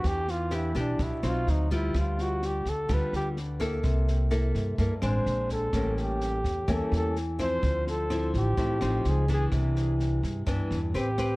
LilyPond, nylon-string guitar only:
\new Staff \with { instrumentName = "Nylon-string guitar" } { \time 4/4 \key c \major \tempo 4 = 127 << { <b d' g'>8 r8 <b d' g'>8 <b d' g'>4 <fis c' dis'>4 <g b f'>8~ | <g b f'>4. r8 <g b f'>4 r8 <bes e' a'>8~ | <bes e' a'>4 <bes e' a'>4 <bes e' a'>8 <gis c' d'>4. | <g bes cis'>4. r8 <g bes cis'>4 r8 <f c' e'>8~ |
<f c' e'>4 <f c' e'>4 <f c' e'>8 <f c' dis'>4 <e b d'>8~ | <e b d'>4. r8 <e b d'>8 r8 <c' g' b'>8 <c' g' b'>8 | } \\ { e2 b,4 r4 | d2 d2 | c2 g,4 r4 | a,2 e2 |
d2 a,4 r4 | c2 g,4 r4 | } >> }